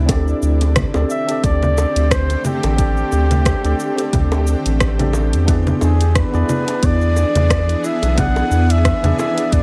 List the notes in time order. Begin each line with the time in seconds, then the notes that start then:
Already playing: D2
0.06 D3 A3 C4 D4 G4, kick, closed hi-hat, high bongo, cabasa
0.10 A4 D5
0.28 cabasa
0.42 D2, cabasa
0.61 closed hi-hat, high bongo, cabasa
0.76 kick, cross-stick, closed hi-hat, low conga, cabasa
0.94 D2 C4 D4 G4 A4 D5, high bongo, cabasa
1.10 E5, cabasa
1.26 C4 D4 G4 A4, closed hi-hat, cabasa
1.32 D5
1.44 D2 D5, kick, closed hi-hat, high bongo, cabasa
1.63 low conga, cabasa
1.77 high bongo, cabasa
1.96 D2, closed hi-hat, cabasa
2.11 C5, kick, cross-stick, closed hi-hat, cabasa
2.30 closed hi-hat, high bongo, cabasa
2.45 G4, low conga, cabasa
2.63 A1, closed hi-hat, high bongo, cabasa
2.76 C4 D4 G4 A4, kick, closed hi-hat, cabasa
2.81 D5
2.97 cabasa
3.12 D2, high bongo, cabasa
3.31 closed hi-hat, low conga, cabasa
3.45 kick, cross-stick, closed hi-hat, high bongo, cabasa
3.63 D2 C4 D4 G4 A4 D5, closed hi-hat, cabasa
3.80 cabasa
3.95 C4 D4 G4, closed hi-hat, high bongo, cabasa
3.99 A4 D5
4.13 D2, kick, closed hi-hat, low conga, cabasa
4.32 high bongo, cabasa
4.47 cabasa
4.66 A1, closed hi-hat, cabasa
4.80 kick, cross-stick, closed hi-hat, high bongo, cabasa
4.98 C4 D4 G4 A4 D5, closed hi-hat, low conga, cabasa
5.13 high bongo, cabasa
5.33 E2, closed hi-hat, cabasa
5.45 E3 B3 D4 E4 G#4, kick, closed hi-hat, high bongo, cabasa
5.49 G#4 D5
5.67 low conga, cabasa
5.81 E2 D4 G#4, high bongo, cabasa
6.01 closed hi-hat, cabasa
6.15 B4, kick, cross-stick, closed hi-hat, cabasa
6.32 E2 B3 D4 E4 G#4 D5, high bongo, cabasa
6.49 E4, low conga, cabasa
6.65 B3 D4 E4, closed hi-hat, high bongo, cabasa
6.69 G#4 D5
6.83 E2 B3 D5, kick, closed hi-hat, cabasa
7.01 cabasa
7.16 D4, high bongo, cabasa
7.35 E2, closed hi-hat, low conga, cabasa
7.50 kick, cross-stick, closed hi-hat, high bongo, cabasa
7.69 closed hi-hat, cabasa
7.84 E4 E5, cabasa
8.02 B1, closed hi-hat, high bongo, cabasa
8.15 B3 D4 E4 F#5, kick, closed hi-hat, low conga, cabasa
8.19 G#4 D5
8.36 high bongo, cabasa
8.51 E2 D4, cabasa
8.70 E5, closed hi-hat, cabasa
8.85 kick, cross-stick, closed hi-hat, high bongo, cabasa
9.03 E2 B3 D4 E4 G#4 D5, closed hi-hat, low conga, cabasa
9.19 E4 E5, high bongo, cabasa
9.34 B3 D4 E4, closed hi-hat, cabasa
9.39 G#4 D5
9.52 E2 B3 D5, kick, closed hi-hat, cabasa